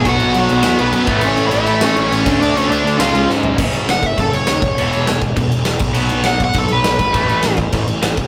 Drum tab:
CC |xxxxxxxx|xxxxxxxx|xxxxxx--|xxxxxxxx|
SD |----o---|----o---|----o-o-|--o---o-|
FT |--------|--------|-------o|--------|
BD |o------o|-------o|--------|o--oo--o|

CC |xxxxxxxx|xxxxxxxx|xxxxxxxx|
SD |--o---o-|--o---o-|--o---o-|
FT |--------|--------|--------|
BD |---oo--o|---oo--o|o--oo--o|